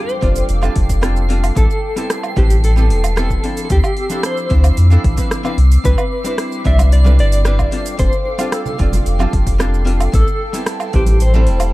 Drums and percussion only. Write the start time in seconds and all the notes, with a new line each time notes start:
0.09 shaker
0.22 kick, open hi-hat
0.36 open hi-hat, shaker
0.49 open hi-hat, shaker
0.63 low woodblock, shaker
0.76 kick, open hi-hat
0.89 kick, open hi-hat, shaker
1.03 cross-stick, open hi-hat, shaker
1.16 shaker
1.30 open hi-hat
1.44 open hi-hat, low woodblock, shaker
1.56 kick, open hi-hat, shaker
1.70 shaker
1.97 open hi-hat, shaker
2.10 cross-stick, open hi-hat, shaker
2.23 low woodblock, shaker
2.37 kick, open hi-hat
2.50 open hi-hat, shaker
2.64 open hi-hat, shaker
2.77 shaker
2.90 open hi-hat
3.04 open hi-hat, low woodblock, shaker
3.17 cross-stick, open hi-hat, shaker
3.30 kick, shaker
3.44 open hi-hat
3.57 open hi-hat, shaker
3.70 kick, open hi-hat, shaker
3.84 low woodblock, shaker
3.97 open hi-hat
4.10 open hi-hat, shaker
4.23 cross-stick, open hi-hat, shaker
4.37 shaker
4.50 kick, open hi-hat
4.64 open hi-hat, low woodblock, shaker
4.77 open hi-hat, shaker
4.91 shaker
5.04 kick, open hi-hat
5.17 kick, open hi-hat, shaker
5.31 cross-stick, open hi-hat, shaker
5.45 low woodblock, shaker
5.58 open hi-hat
5.72 open hi-hat, shaker
5.85 kick, open hi-hat, shaker
5.98 low woodblock, shaker
6.25 open hi-hat, shaker
6.38 cross-stick, open hi-hat, shaker
6.52 shaker
6.65 kick, open hi-hat
6.78 open hi-hat, high conga, low woodblock, shaker
6.92 open hi-hat, shaker
7.05 high bongo, high conga, shaker
7.19 open hi-hat
7.32 open hi-hat, shaker
7.45 cross-stick, open hi-hat, shaker
7.59 kick, low woodblock, shaker
7.72 open hi-hat
7.86 open hi-hat, shaker
7.99 kick, open hi-hat, shaker
8.12 shaker
8.25 high bongo
8.39 open hi-hat, low woodblock, shaker
8.52 cross-stick, open hi-hat, shaker
8.66 low conga, shaker
8.79 kick, open hi-hat
8.92 open hi-hat, high bongo, high conga, low conga, shaker
9.06 open hi-hat, shaker
9.19 high conga, low woodblock, shaker
9.33 kick, open hi-hat
9.47 kick, open hi-hat, shaker
9.60 cross-stick, open hi-hat, shaker
9.74 shaker
9.87 open hi-hat
10.00 open hi-hat, low woodblock, shaker
10.13 kick, open hi-hat, shaker
10.27 shaker
10.54 open hi-hat, shaker
10.66 cross-stick, open hi-hat, shaker
10.80 low woodblock, shaker
10.93 kick, open hi-hat
11.06 open hi-hat, high conga, shaker
11.20 open hi-hat, shaker
11.34 high bongo, high conga, shaker
11.47 open hi-hat
11.60 open hi-hat, low woodblock, shaker